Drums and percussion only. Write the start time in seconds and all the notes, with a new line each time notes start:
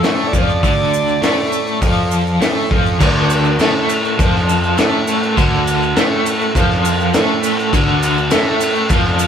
0.04 snare, open hi-hat, maracas
0.33 kick, maracas
0.49 maracas
0.63 kick, open hi-hat, maracas
0.94 maracas
1.08 maracas
1.23 snare, open hi-hat, maracas
1.52 maracas
1.67 maracas
1.82 kick, open hi-hat, maracas
2.11 maracas
2.27 maracas
2.42 snare, open hi-hat, maracas
2.71 kick
2.86 maracas
3.00 kick, crash, maracas
3.30 crash, maracas
3.44 maracas
3.59 snare, crash, maracas
3.89 crash, maracas
4.05 maracas
4.19 kick, crash, maracas
4.36 snare
4.49 crash, maracas
4.63 maracas
4.78 snare, crash, maracas
5.07 crash, maracas
5.23 maracas
5.37 kick, crash, maracas
5.67 crash, maracas
5.83 maracas
5.96 snare, crash, maracas
6.26 crash, maracas
6.41 maracas
6.55 kick, crash, maracas
6.70 snare
6.85 crash, maracas
7.00 maracas
7.14 snare, crash, maracas
7.43 crash, maracas
7.59 maracas
7.73 kick, crash, maracas
8.02 crash, maracas
8.17 maracas
8.31 snare, crash, maracas
8.61 crash, maracas
8.75 maracas
8.89 kick, crash, maracas
9.05 snare
9.19 crash, maracas